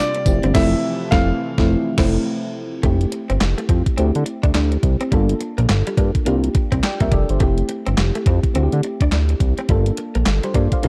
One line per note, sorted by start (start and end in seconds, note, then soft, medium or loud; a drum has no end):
0.00 2.79 C3 medium
0.00 0.24 G3 medium
0.00 0.22 A#3 medium
0.00 0.12 D4 medium
0.00 0.22 D4 medium
0.00 0.23 F4 medium
0.00 0.24 F4 medium
0.00 0.23 G4 medium
0.00 0.56 D5 loud
0.15 muted clean electric guitar stroke medium
0.15 closed hi-hat medium
0.26 0.40 F1 loud
0.26 2.81 E3 medium
0.26 2.81 F3 medium
0.26 0.53 A3 medium
0.26 2.81 A3 medium
0.26 0.54 C4 medium
0.26 0.55 E4 medium
0.26 0.55 G4 medium
0.26 kick loud
0.26 closed hi-hat medium
0.26 tambourine medium
0.43 0.53 G1 loud
0.43 0.52 C4 medium
0.43 closed hi-hat medium
0.54 0.75 F1 loud
0.54 0.75 A3 loud
0.54 0.75 C4 loud
0.54 0.76 E4 loud
0.54 1.08 E5 medium
0.54 kick loud
0.54 snare loud
0.54 crash medium
1.11 1.33 F1 loud
1.11 1.32 A3 loud
1.11 1.33 C4 medium
1.11 1.33 E4 loud
1.11 2.22 F5 medium
1.11 kick loud
1.11 snare loud
1.58 1.76 F1 loud
1.58 1.77 A3 loud
1.58 1.77 C4 loud
1.58 1.77 E4 loud
1.58 kick loud
1.58 snare loud
1.98 2.18 F1 loud
1.98 2.18 A3 loud
1.98 2.19 C4 loud
1.98 2.19 E4 loud
1.98 kick loud
1.98 snare loud
1.98 crash medium
2.83 3.06 F1 loud
2.83 2.91 G#3 medium
2.83 2.97 A3 medium
2.83 3.96 C4 medium
2.83 3.96 E4 medium
2.83 3.96 G4 medium
2.83 kick loud
2.83 closed hi-hat medium
2.89 3.96 A3 medium
3.01 closed hi-hat soft
3.12 muted clean electric guitar stroke soft
3.12 closed hi-hat medium
3.30 3.38 G1 medium
3.30 3.38 C4 medium
3.30 closed hi-hat medium
3.41 3.55 F1 medium
3.41 muted clean electric guitar stroke soft
3.41 snare loud
3.41 clap medium
3.41 closed hi-hat medium
3.58 3.67 A3 medium
3.58 closed hi-hat medium
3.69 3.83 F2 loud
3.69 3.82 C4 medium
3.69 kick medium
3.69 closed hi-hat medium
3.86 kick medium
3.86 closed hi-hat soft
3.97 4.12 D2 loud
3.97 5.09 A3 medium
3.97 4.11 C4 medium
3.97 5.10 C4 medium
3.97 5.10 E4 medium
3.97 5.11 G4 medium
3.97 closed hi-hat medium
4.15 4.24 D3 medium
4.15 closed hi-hat medium
4.26 muted clean electric guitar stroke soft
4.26 closed hi-hat medium
4.43 4.52 D2 medium
4.43 4.52 D4 medium
4.43 kick medium
4.43 closed hi-hat soft
4.54 4.77 D2 loud
4.54 4.68 D4 medium
4.54 snare loud
4.54 clap medium
4.54 closed hi-hat medium
4.72 muted clean electric guitar stroke soft
4.72 closed hi-hat soft
4.83 4.97 C2 medium
4.83 kick medium
4.83 closed hi-hat medium
5.01 5.09 C4 medium
5.01 closed hi-hat soft
5.11 5.34 G1 loud
5.11 5.25 G3 medium
5.11 6.23 A#3 medium
5.11 6.24 D4 medium
5.11 6.24 F4 medium
5.11 6.25 A4 medium
5.11 kick loud
5.11 closed hi-hat medium
5.29 closed hi-hat medium
5.41 muted clean electric guitar stroke soft
5.41 closed hi-hat medium
5.58 5.67 A#1 loud
5.58 5.67 A#3 medium
5.58 closed hi-hat medium
5.69 5.83 G1 medium
5.69 muted clean electric guitar stroke soft
5.69 snare loud
5.69 clap medium
5.69 closed hi-hat medium
5.87 5.96 G3 medium
5.87 closed hi-hat medium
5.97 6.11 G2 loud
5.97 6.11 A#3 medium
5.97 kick loud
5.97 closed hi-hat medium
6.15 kick medium
6.15 closed hi-hat soft
6.25 6.49 C2 loud
6.25 7.38 A#3 medium
6.25 6.40 A#3 medium
6.25 7.38 D4 medium
6.25 7.38 F4 medium
6.25 6.83 G4 medium
6.25 closed hi-hat medium
6.44 closed hi-hat medium
6.55 muted clean electric guitar stroke soft
6.55 kick medium
6.55 closed hi-hat medium
6.72 6.81 C2 medium
6.72 6.81 C4 medium
6.72 kick medium
6.72 closed hi-hat soft
6.83 7.00 D5 medium
6.83 7.00 G5 medium
6.83 muted clean electric guitar stroke soft
6.83 snare loud
6.83 clap medium
6.83 closed hi-hat medium
7.00 7.10 C2 medium
7.00 7.09 A#3 medium
7.00 7.12 A#4 medium
7.00 7.12 E5 medium
7.00 kick medium
7.00 closed hi-hat medium
7.12 7.26 F1 loud
7.12 7.25 G3 medium
7.12 7.29 A4 medium
7.12 7.29 D5 medium
7.12 kick medium
7.12 closed hi-hat medium
7.29 7.38 G1 medium
7.29 7.41 G4 medium
7.29 7.57 C5 medium
7.29 closed hi-hat medium
7.40 7.63 F1 loud
7.40 8.52 A3 medium
7.40 7.54 A3 medium
7.40 8.53 C4 medium
7.40 8.53 E4 medium
7.40 8.54 G4 medium
7.40 kick loud
7.40 closed hi-hat medium
7.58 closed hi-hat medium
7.69 muted clean electric guitar stroke soft
7.69 closed hi-hat medium
7.86 7.96 G1 medium
7.86 7.95 C4 medium
7.86 closed hi-hat medium
7.98 8.12 F1 loud
7.98 muted clean electric guitar stroke soft
7.98 snare loud
7.98 clap medium
7.98 closed hi-hat medium
8.15 8.24 A3 medium
8.15 closed hi-hat medium
8.26 8.40 F2 loud
8.26 8.40 C4 medium
8.26 kick loud
8.26 closed hi-hat medium
8.43 kick medium
8.43 closed hi-hat soft
8.54 8.69 D2 loud
8.54 9.66 A3 medium
8.54 9.67 C4 medium
8.54 8.69 C4 medium
8.54 9.67 E4 medium
8.54 8.64 F#4 medium
8.54 closed hi-hat medium
8.63 9.71 G4 medium
8.72 8.81 D3 loud
8.72 closed hi-hat medium
8.83 muted clean electric guitar stroke soft
8.83 closed hi-hat medium
9.01 9.10 D2 medium
9.01 9.10 D4 medium
9.01 kick medium
9.01 closed hi-hat medium
9.12 9.35 D2 medium
9.12 9.26 D4 medium
9.12 snare loud
9.12 clap medium
9.12 closed hi-hat medium
9.29 muted clean electric guitar stroke soft
9.29 closed hi-hat soft
9.40 9.54 C2 medium
9.40 kick medium
9.40 closed hi-hat medium
9.58 9.67 C4 medium
9.58 closed hi-hat soft
9.69 9.92 G1 loud
9.69 9.83 G3 medium
9.69 9.77 A3 medium
9.69 10.81 D4 medium
9.69 10.82 F4 medium
9.69 10.26 A4 medium
9.69 kick loud
9.69 closed hi-hat medium
9.75 10.81 A#3 medium
9.86 closed hi-hat medium
9.97 muted clean electric guitar stroke soft
9.97 closed hi-hat medium
10.15 10.24 A#1 medium
10.15 10.24 A#3 medium
10.15 closed hi-hat medium
10.26 10.40 G1 loud
10.26 muted clean electric guitar stroke soft
10.26 snare loud
10.26 clap loud
10.26 closed hi-hat medium
10.43 10.52 G3 medium
10.43 10.55 G4 medium
10.43 10.55 C5 medium
10.43 closed hi-hat medium
10.54 10.68 G2 loud
10.54 10.69 A#3 medium
10.54 10.72 A4 medium
10.54 10.72 D5 medium
10.54 kick medium
10.54 closed hi-hat medium
10.72 10.88 C5 medium
10.72 10.88 F5 medium
10.72 kick medium
10.72 closed hi-hat medium
10.82 10.88 C2 loud
10.82 10.88 A#3 medium
10.82 10.88 D4 medium
10.82 10.88 F4 medium
10.82 10.88 G4 medium
10.82 closed hi-hat medium